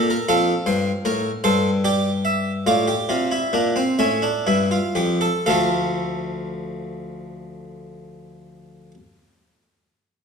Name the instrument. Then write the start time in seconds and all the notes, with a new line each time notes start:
harpsichord
Already playing: A#2 D5
0.10 A#4
0.28 F2 A4 F5
0.66 G2 C5
1.05 A2 A#4
1.44 G2 A4 C5
1.84 G4 D5
2.25 E5
2.67 A2 F4 D5
2.88 G4
3.09 C3 F4
3.31 E4
3.53 A#2 D4
3.76 C4
3.99 A2 C#4 E5
4.22 D4
4.47 G2 E4
4.71 F4
4.95 F2 G4
5.21 A4
5.46 D2 F3 A3 A4 F5